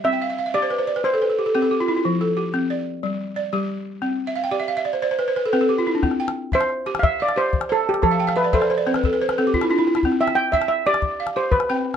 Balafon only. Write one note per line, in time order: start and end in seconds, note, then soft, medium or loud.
0.00 0.20 E5 medium
0.04 0.37 C4 medium
0.13 0.28 G5 soft
0.22 0.36 F5 medium
0.30 0.45 E5 medium
0.39 0.53 F5 medium
0.46 0.61 E5 medium
0.54 0.87 G4 medium
0.54 0.69 D5 medium
0.62 0.77 C5 medium
0.70 0.86 B4 medium
0.78 0.94 C5 medium
0.87 1.03 D5 medium
0.96 1.11 B4 medium
1.05 1.37 C5 medium
1.14 1.28 A4 medium
1.22 1.36 B4 medium
1.30 1.45 A4 medium
1.39 1.53 G4 medium
1.46 1.61 A4 medium
1.55 1.88 C4 medium
1.55 1.70 G4 medium
1.62 1.78 A4 medium
1.71 1.86 G4 medium
1.80 1.95 F4 medium
1.88 2.03 E4 medium
1.97 2.11 F4 medium
2.05 2.38 F3 medium
2.21 2.71 A4 medium
2.37 2.87 G4 medium
2.54 2.87 C4 medium
2.70 3.20 D5 medium
3.03 3.37 G3 medium
3.36 3.86 D5 medium
3.53 3.86 G3 medium
3.53 4.03 G4 medium
4.02 4.36 C4 medium
4.27 4.43 E5 medium
4.36 4.52 F5 medium
4.44 4.60 G5 medium
4.51 4.86 G4 medium
4.51 4.68 D5 medium
4.60 4.76 E5 medium
4.68 4.84 F5 medium
4.77 4.93 E5 medium
4.85 5.01 D5 medium
4.93 5.01 C5 medium
5.02 5.10 C5 medium
5.02 5.18 D5 medium
5.11 5.27 C5 medium
5.19 5.35 B4 medium
5.28 5.44 C5 medium
5.36 5.52 B4 medium
5.46 5.60 A4 medium
5.53 5.86 C4 medium
5.53 5.69 B4 medium
5.61 5.77 A4 medium
5.69 5.85 G4 medium
5.78 5.94 F4 medium
5.87 6.02 E4 medium
5.95 6.10 D4 medium
6.03 6.36 C4 medium
6.20 6.70 G5 medium
6.53 6.87 E5 medium
6.87 7.20 G4 medium
7.20 7.70 F5 medium
7.36 7.70 G4 medium
7.69 8.03 C5 medium
8.02 8.36 F3 medium
8.11 8.26 F5 medium
8.20 8.35 G5 medium
8.27 8.43 F5 medium
8.36 8.51 E5 medium
8.44 8.60 D5 medium
8.53 8.86 A4 medium
8.53 8.69 E5 medium
8.61 8.76 D5 medium
8.70 8.85 C5 medium
8.78 8.93 D5 medium
8.87 9.20 C4 medium
8.87 9.02 C5 medium
8.96 9.11 B4 medium
9.05 9.19 A4 medium
9.13 9.28 B4 medium
9.22 9.36 C5 medium
9.29 9.44 B4 medium
9.38 9.70 C4 medium
9.38 9.53 A4 medium
9.47 9.61 G4 medium
9.54 9.69 F4 medium
9.63 9.77 E4 medium
9.71 9.86 D4 medium
9.71 9.86 F4 medium
9.79 9.94 E4 medium
9.87 10.02 F4 medium
9.96 10.11 E4 medium
10.05 10.37 C4 medium
10.21 10.70 G5 medium
10.54 10.86 E5 medium
10.87 11.20 G4 medium
11.20 11.70 F5 medium
11.36 11.69 G4 medium
11.70 11.97 C4 medium
11.70 11.97 G5 medium